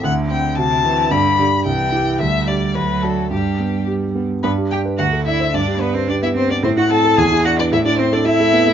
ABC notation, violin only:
X:1
M:2/4
L:1/16
Q:1/4=110
K:G
V:1 name="Violin"
f2 g2 a4 | b4 g4 | e2 d2 B2 A2 | G4 z4 |
B2 g2 f2 e2 | d2 B c d e c d | c f a2 ^g2 f d | e d c d e4 |]